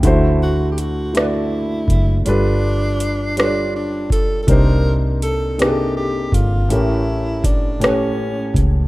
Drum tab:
HH |x-xx-x|x-xx-x|x-xx-x|x-xx-x|
SD |---r--|---r--|---r--|---r--|
BD |o----o|-----o|o----o|--o--o|